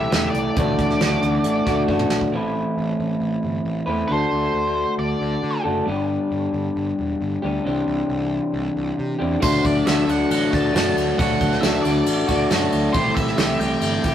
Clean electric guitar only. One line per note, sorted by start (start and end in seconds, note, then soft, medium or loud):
0.00 0.10 E3 loud
0.00 0.12 A3 medium
0.00 0.13 E4 medium
0.00 0.13 G4 medium
0.10 0.57 E3 medium
0.10 0.57 A3 medium
0.10 0.58 E4 medium
0.14 0.56 G4 medium
0.56 0.98 D3 medium
0.56 1.00 E3 loud
0.56 1.01 A3 loud
0.56 1.01 D4 loud
0.56 1.02 F#4 loud
0.99 1.44 D3 loud
0.99 1.44 E3 medium
0.99 1.23 A3 loud
0.99 1.22 D4 loud
0.99 1.20 F#4 loud
1.21 1.68 A3 medium
1.21 1.66 D4 medium
1.21 1.64 F#4 medium
1.66 1.87 A3 medium
1.66 1.88 D4 medium
1.66 1.89 F#4 medium
1.87 2.30 E3 medium
1.87 2.31 A3 medium
1.87 2.31 D4 medium
1.87 2.32 F#4 medium
2.31 3.85 A2 medium
2.31 3.86 E3 medium
2.31 3.86 A3 medium
2.31 3.87 C4 medium
2.31 3.86 E4 medium
2.36 3.85 B4 medium
3.86 4.09 A2 medium
3.86 4.07 E3 medium
3.86 4.08 A3 medium
3.86 4.08 C4 medium
3.86 4.08 E4 medium
3.86 4.07 B4 medium
4.08 5.63 D3 medium
4.08 5.63 A3 medium
4.08 5.65 D4 medium
4.08 5.64 F#4 medium
4.08 5.62 A4 medium
5.64 5.85 D3 medium
5.64 5.87 A3 medium
5.64 5.87 D4 medium
5.64 5.86 F#4 medium
5.64 5.85 A4 medium
5.86 7.41 G3 medium
5.86 7.41 B3 medium
5.86 7.43 D4 medium
5.86 7.41 G4 medium
7.42 7.65 G3 medium
7.42 7.65 B3 medium
7.42 7.66 D4 medium
7.42 7.63 G4 medium
7.64 9.18 C3 medium
7.64 9.19 E3 medium
7.64 9.19 C4 medium
7.64 9.18 D4 medium
7.64 9.17 G4 medium
9.19 9.42 C3 medium
9.19 9.40 E3 medium
9.19 9.40 C4 medium
9.19 9.41 D4 medium
9.19 9.40 G4 medium
9.40 9.85 D3 loud
9.40 9.86 F#3 medium
9.40 9.87 A3 loud
9.40 9.88 D4 loud
9.40 9.88 F#4 loud
9.86 11.17 D3 medium
9.86 10.73 F#3 loud
9.86 10.09 A3 loud
9.86 10.07 D4 loud
9.86 10.06 F#4 loud
10.06 10.54 A3 medium
10.06 10.51 D4 medium
10.06 10.49 F#4 medium
10.51 10.73 A3 medium
10.51 10.74 D4 medium
10.51 10.75 F#4 medium
10.73 11.18 F#3 medium
10.73 11.19 A3 medium
10.73 11.19 D4 medium
10.73 11.20 F#4 medium
11.18 11.60 D3 loud
11.18 11.61 F#3 medium
11.18 11.62 A3 medium
11.18 11.62 D4 loud
11.18 11.63 F#4 loud
11.61 12.06 D3 loud
11.61 12.06 F#3 loud
11.61 11.87 A3 loud
11.61 11.84 D4 loud
11.61 11.82 F#4 loud
11.84 12.30 A3 medium
11.84 12.27 D4 medium
11.84 12.26 F#4 medium
12.27 12.50 A3 medium
12.27 12.51 D4 medium
12.27 12.51 F#4 medium
12.49 12.93 F#3 medium
12.49 12.95 A3 medium
12.49 12.94 D4 medium
12.49 12.94 F#4 loud
12.94 13.36 C3 medium
12.94 13.38 E3 loud
12.94 13.38 A3 loud
12.94 13.39 E4 loud
12.94 13.40 G4 loud
13.36 14.15 C3 loud
13.36 14.15 E3 loud
13.36 13.62 A3 loud
13.36 13.60 E4 loud
13.36 13.59 G4 loud
13.59 14.06 A3 medium
13.59 14.04 E4 medium
13.59 14.02 G4 medium
14.03 14.15 A3 medium
14.03 14.15 E4 medium
14.03 14.15 G4 medium